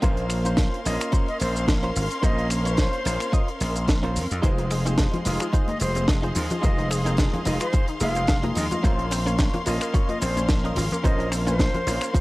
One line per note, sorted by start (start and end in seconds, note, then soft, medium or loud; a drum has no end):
0.02 0.66 A#1 loud
0.02 0.82 A#3 loud
0.02 0.24 C#4 loud
0.02 0.82 C#4 medium
0.02 4.39 C#4 medium
0.02 0.24 F4 loud
0.02 0.83 F4 medium
0.02 4.39 A#4 medium
0.02 0.24 A#4 loud
0.02 0.83 C5 loud
0.02 0.24 C5 loud
0.02 4.39 F5 medium
0.02 4.39 C6 medium
0.02 kick loud
0.02 closed hi-hat medium
0.02 shaker medium
0.17 closed hi-hat soft
0.30 finger snap medium
0.30 open hi-hat loud
0.30 shaker medium
0.45 0.79 C#4 medium
0.45 0.79 F4 medium
0.45 0.79 A#4 medium
0.45 0.80 C5 loud
0.45 closed hi-hat medium
0.45 shaker medium
0.57 kick loud
0.57 snare loud
0.57 closed hi-hat medium
0.57 shaker soft
0.74 closed hi-hat soft
0.85 0.96 A#1 medium
0.85 2.20 A#3 medium
0.85 2.20 C#4 medium
0.85 2.20 F4 medium
0.85 2.21 D#5 loud
0.85 open hi-hat loud
0.85 shaker medium
1.01 finger snap medium
1.01 closed hi-hat medium
1.01 shaker medium
1.12 1.28 C#4 medium
1.12 1.28 F4 medium
1.12 1.28 A#4 medium
1.12 1.28 C5 medium
1.12 kick loud
1.12 closed hi-hat medium
1.12 shaker medium
1.28 1.38 D#5 medium
1.28 closed hi-hat soft
1.40 1.90 A#1 loud
1.40 1.66 C5 loud
1.40 muted clean electric guitar stroke soft
1.40 open hi-hat loud
1.40 shaker medium
1.56 closed hi-hat medium
1.56 shaker medium
1.67 muted clean electric guitar stroke soft
1.67 kick loud
1.67 snare loud
1.67 closed hi-hat medium
1.67 shaker soft
1.83 2.03 C#4 medium
1.83 2.03 F4 medium
1.83 2.03 A#4 medium
1.83 2.04 C5 loud
1.83 closed hi-hat soft
1.96 2.07 G#1 loud
1.96 open hi-hat loud
1.96 shaker medium
2.10 closed hi-hat medium
2.10 shaker medium
2.22 2.86 A#1 loud
2.22 3.02 A#3 medium
2.22 2.44 C#4 loud
2.22 3.02 C#4 medium
2.22 2.44 F4 loud
2.22 3.03 F4 medium
2.22 2.45 A#4 loud
2.22 2.45 C5 loud
2.22 2.48 D#5 medium
2.22 3.03 C6 medium
2.22 kick loud
2.22 closed hi-hat medium
2.22 shaker medium
2.39 closed hi-hat soft
2.50 finger snap medium
2.50 open hi-hat loud
2.50 shaker medium
2.65 2.99 C#4 medium
2.65 2.99 F4 medium
2.65 2.99 A#4 medium
2.65 3.42 C5 medium
2.65 3.00 C#5 loud
2.65 closed hi-hat medium
2.65 shaker medium
2.77 kick loud
2.77 snare loud
2.77 closed hi-hat medium
2.77 shaker medium
2.93 closed hi-hat soft
3.05 3.16 A#1 medium
3.05 3.22 A#3 medium
3.05 3.22 C#4 medium
3.05 3.23 F4 medium
3.05 3.23 C#5 medium
3.05 open hi-hat loud
3.05 shaker loud
3.20 finger snap medium
3.20 closed hi-hat medium
3.20 shaker medium
3.32 3.48 C#4 medium
3.32 3.48 F4 medium
3.32 3.48 A#4 medium
3.32 3.49 D#5 loud
3.32 kick loud
3.32 closed hi-hat medium
3.32 shaker medium
3.48 closed hi-hat soft
3.60 4.03 A#1 medium
3.60 muted clean electric guitar stroke soft
3.60 open hi-hat loud
3.60 shaker medium
3.76 closed hi-hat medium
3.76 shaker medium
3.87 muted clean electric guitar stroke soft
3.87 kick loud
3.87 snare loud
3.87 closed hi-hat medium
3.87 shaker medium
4.03 4.18 A#1 medium
4.03 4.23 C#4 medium
4.03 4.23 F4 medium
4.03 4.24 A#4 medium
4.03 4.24 C5 medium
4.03 closed hi-hat soft
4.16 4.27 F2 loud
4.16 open hi-hat loud
4.16 shaker medium
4.31 4.40 F2 medium
4.31 closed hi-hat medium
4.31 shaker medium
4.42 5.07 F1 loud
4.42 4.48 D#3 loud
4.42 5.22 G#3 loud
4.42 5.22 D#4 medium
4.42 4.64 D#4 loud
4.42 4.65 F4 loud
4.42 5.23 F4 medium
4.42 4.65 G#4 medium
4.42 8.80 G#4 medium
4.42 5.23 C5 loud
4.42 4.65 C5 loud
4.42 8.80 D#5 medium
4.42 12.21 F5 medium
4.42 12.21 C6 medium
4.42 kick loud
4.42 closed hi-hat medium
4.42 shaker soft
4.42 shaker medium
4.58 4.64 D#3 loud
4.58 closed hi-hat soft
4.58 high bongo medium
4.71 4.78 G#3 loud
4.71 finger snap medium
4.71 open hi-hat loud
4.71 shaker medium
4.85 4.92 C4 loud
4.85 5.19 D#4 medium
4.85 5.20 F4 medium
4.85 5.20 G#4 medium
4.85 5.20 C5 loud
4.85 closed hi-hat medium
4.85 high conga medium
4.85 shaker soft
4.85 shaker medium
4.98 5.06 G#3 medium
4.98 kick loud
4.98 snare loud
4.98 closed hi-hat medium
4.98 shaker soft
4.98 shaker medium
5.13 5.17 F3 medium
5.13 closed hi-hat soft
5.13 high bongo medium
5.13 low conga medium
5.13 shaker soft
5.25 5.37 F1 medium
5.25 5.37 D#3 loud
5.25 6.60 G#3 medium
5.25 6.60 D#4 medium
5.25 6.61 F4 medium
5.25 6.61 F5 medium
5.25 open hi-hat loud
5.25 high bongo medium
5.25 shaker medium
5.40 5.50 F3 loud
5.40 finger snap medium
5.40 closed hi-hat medium
5.40 shaker soft
5.40 shaker medium
5.53 5.58 D#3 loud
5.53 5.68 D#4 medium
5.53 5.69 F4 medium
5.53 5.69 G#4 medium
5.53 5.69 C5 loud
5.53 kick loud
5.53 closed hi-hat medium
5.53 shaker medium
5.68 5.75 D#3 loud
5.68 5.78 D#5 medium
5.68 closed hi-hat soft
5.68 high conga medium
5.68 shaker soft
5.80 6.30 F1 medium
5.80 5.88 G#3 loud
5.80 6.06 C5 loud
5.80 muted clean electric guitar stroke soft
5.80 open hi-hat loud
5.80 shaker medium
5.95 6.02 C4 loud
5.95 closed hi-hat medium
5.95 high conga medium
5.95 shaker medium
5.95 shaker soft
6.07 6.16 G#3 medium
6.07 muted clean electric guitar stroke soft
6.07 kick loud
6.07 snare loud
6.07 closed hi-hat medium
6.07 shaker medium
6.07 shaker soft
6.22 6.27 F3 medium
6.22 6.43 D#4 medium
6.22 6.43 F4 medium
6.22 6.43 G#4 medium
6.22 6.44 C5 loud
6.22 closed hi-hat soft
6.22 shaker soft
6.35 6.47 D#2 loud
6.35 6.47 D#3 loud
6.35 open hi-hat loud
6.35 high bongo soft
6.35 low conga medium
6.35 shaker medium
6.50 6.60 F3 loud
6.50 closed hi-hat medium
6.50 low conga medium
6.50 shaker soft
6.50 shaker medium
6.62 7.27 F1 loud
6.62 6.68 D#3 loud
6.62 7.43 G#3 medium
6.62 6.84 D#4 loud
6.62 7.43 D#4 medium
6.62 6.84 F4 loud
6.62 7.43 F4 medium
6.62 6.85 G#4 loud
6.62 6.85 C5 loud
6.62 7.44 C5 medium
6.62 6.88 D#5 medium
6.62 kick loud
6.62 closed hi-hat medium
6.62 shaker medium
6.78 6.84 D#3 loud
6.78 closed hi-hat soft
6.78 high bongo medium
6.91 6.98 G#3 loud
6.91 finger snap medium
6.91 open hi-hat loud
6.91 shaker medium
7.05 7.12 C4 loud
7.05 7.39 D#4 medium
7.05 7.40 F4 medium
7.05 7.40 G#4 medium
7.05 7.40 A#4 loud
7.05 closed hi-hat medium
7.05 high conga medium
7.05 shaker soft
7.05 shaker medium
7.17 7.26 G#3 medium
7.17 kick loud
7.17 snare loud
7.17 closed hi-hat medium
7.17 shaker medium
7.33 7.37 F3 medium
7.33 closed hi-hat soft
7.33 high bongo medium
7.33 low conga medium
7.33 shaker soft
7.45 7.57 F1 medium
7.45 7.57 D#3 loud
7.45 7.63 G#3 medium
7.45 7.63 D#4 medium
7.45 7.63 F4 medium
7.45 7.63 D#5 medium
7.45 open hi-hat loud
7.45 high bongo medium
7.45 shaker loud
7.45 shaker medium
7.60 7.70 F3 loud
7.60 7.86 C5 loud
7.60 finger snap medium
7.60 closed hi-hat medium
7.60 shaker medium
7.60 shaker soft
7.73 7.78 D#3 loud
7.73 7.88 D#4 medium
7.73 7.89 F4 medium
7.73 7.89 G#4 medium
7.73 7.89 C5 loud
7.73 kick loud
7.73 closed hi-hat medium
7.73 shaker medium
7.88 7.94 D#3 loud
7.88 closed hi-hat soft
7.88 shaker soft
8.00 8.50 F1 loud
8.00 8.80 G#3 loud
8.00 8.08 G#3 loud
8.00 8.81 D#4 medium
8.00 8.81 F4 medium
8.00 8.44 F5 loud
8.00 8.81 F5 loud
8.00 muted clean electric guitar stroke soft
8.00 open hi-hat loud
8.00 high conga medium
8.00 shaker medium
8.15 8.22 C4 loud
8.15 closed hi-hat medium
8.15 shaker medium
8.15 shaker soft
8.27 8.36 G#3 medium
8.27 muted clean electric guitar stroke soft
8.27 kick loud
8.27 snare loud
8.27 closed hi-hat medium
8.27 shaker soft
8.43 8.47 F3 medium
8.43 8.63 D#4 medium
8.43 8.64 F4 medium
8.43 8.64 G#4 medium
8.43 8.64 A#4 loud
8.43 closed hi-hat soft
8.43 high conga loud
8.43 shaker soft
8.55 8.67 D#2 loud
8.55 8.67 D#3 loud
8.55 8.66 D#5 medium
8.55 open hi-hat loud
8.55 low conga medium
8.55 shaker medium
8.71 8.80 F3 loud
8.71 8.79 D#5 medium
8.71 closed hi-hat medium
8.71 high conga medium
8.71 low conga medium
8.71 shaker soft
8.71 shaker medium
8.82 9.47 A#1 loud
8.82 8.88 F3 loud
8.82 9.63 A#3 loud
8.82 9.05 C#4 loud
8.82 9.63 C#4 medium
8.82 12.21 C#4 medium
8.82 9.05 F4 loud
8.82 9.63 F4 medium
8.82 9.05 A#4 loud
8.82 12.21 A#4 medium
8.82 9.05 C5 loud
8.82 9.64 C6 loud
8.82 kick loud
8.82 closed hi-hat medium
8.82 shaker soft
8.98 9.05 F3 loud
8.98 closed hi-hat soft
8.98 high bongo medium
9.11 9.19 C4 loud
9.11 finger snap medium
9.11 open hi-hat loud
9.11 shaker medium
9.26 9.60 C#4 medium
9.26 9.32 C#4 loud
9.26 9.60 F4 medium
9.26 9.60 A#4 medium
9.26 9.60 C#5 medium
9.26 closed hi-hat medium
9.26 high conga medium
9.26 shaker soft
9.26 shaker medium
9.38 9.46 C4 medium
9.38 kick loud
9.38 snare loud
9.38 closed hi-hat medium
9.38 shaker soft
9.53 9.57 A#3 medium
9.53 closed hi-hat soft
9.53 high bongo medium
9.53 low conga medium
9.53 shaker soft
9.65 9.77 A#1 medium
9.65 9.77 F3 loud
9.65 11.00 A#3 medium
9.65 11.01 C#4 medium
9.65 11.01 F4 medium
9.65 11.01 D#5 medium
9.65 open hi-hat loud
9.65 high bongo medium
9.65 shaker medium
9.81 9.90 A#3 loud
9.81 finger snap medium
9.81 closed hi-hat medium
9.81 shaker soft
9.81 shaker medium
9.94 9.98 F3 loud
9.94 10.09 C#4 medium
9.94 10.09 F4 medium
9.94 10.09 A#4 medium
9.94 10.10 C#5 loud
9.94 kick loud
9.94 closed hi-hat medium
9.94 shaker soft
9.94 shaker medium
10.09 10.15 F3 loud
10.09 10.19 D#5 medium
10.09 closed hi-hat soft
10.09 high conga medium
10.09 shaker soft
10.21 10.71 A#1 loud
10.21 10.29 C4 loud
10.21 10.46 C5 medium
10.21 muted clean electric guitar stroke soft
10.21 open hi-hat loud
10.21 shaker medium
10.37 10.42 C#4 loud
10.37 closed hi-hat medium
10.37 high conga medium
10.37 shaker soft
10.37 shaker medium
10.49 10.56 C4 medium
10.49 muted clean electric guitar stroke soft
10.49 kick loud
10.49 snare loud
10.49 closed hi-hat medium
10.49 shaker soft
10.49 shaker medium
10.64 10.68 A#3 medium
10.64 10.84 C#4 medium
10.64 10.84 F4 medium
10.64 10.84 A#4 medium
10.64 10.85 D#5 medium
10.64 closed hi-hat soft
10.64 shaker soft
10.75 10.87 G#1 loud
10.75 10.87 F3 loud
10.75 open hi-hat loud
10.75 high bongo soft
10.75 low conga medium
10.75 shaker medium
10.78 shaker medium
10.91 11.01 A#3 loud
10.91 closed hi-hat medium
10.91 low conga medium
10.91 shaker soft
10.93 shaker medium
11.03 11.67 A#1 loud
11.03 11.08 F3 loud
11.03 11.83 A#3 medium
11.03 11.25 C#4 loud
11.03 11.84 C#4 medium
11.03 11.84 F4 medium
11.03 11.25 F4 medium
11.03 11.26 A#4 loud
11.03 11.84 C5 medium
11.03 11.26 C5 loud
11.03 11.29 D#5 loud
11.03 kick loud
11.03 closed hi-hat medium
11.03 shaker soft
11.19 11.25 F3 loud
11.19 closed hi-hat soft
11.19 high bongo medium
11.32 11.39 C4 loud
11.32 finger snap medium
11.32 open hi-hat loud
11.32 shaker loud
11.32 shaker medium
11.47 11.80 C#4 medium
11.47 11.53 C#4 loud
11.47 11.80 F4 medium
11.47 11.81 A#4 medium
11.47 12.21 C5 loud
11.47 11.81 C5 medium
11.47 closed hi-hat medium
11.47 high conga medium
11.47 shaker soft
11.47 shaker medium
11.59 11.66 C4 medium
11.59 kick loud
11.59 snare loud
11.59 closed hi-hat medium
11.59 shaker medium
11.59 shaker soft
11.74 11.78 A#3 medium
11.74 closed hi-hat soft
11.74 high bongo medium
11.74 low conga medium
11.74 shaker soft
11.87 11.97 A#1 medium
11.87 11.98 F3 loud
11.87 12.03 A#3 medium
11.87 12.03 C#4 medium
11.87 12.04 F4 medium
11.87 12.04 C#5 medium
11.87 open hi-hat loud
11.87 high bongo medium
11.87 shaker medium
12.01 12.11 A#3 loud
12.01 finger snap medium
12.01 closed hi-hat medium
12.01 shaker soft
12.01 shaker medium
12.14 12.19 F3 loud
12.14 12.21 C#4 medium
12.14 12.21 F4 medium
12.14 12.21 A#4 medium
12.14 12.21 C5 medium
12.14 kick loud
12.14 closed hi-hat medium
12.14 shaker soft
12.14 shaker medium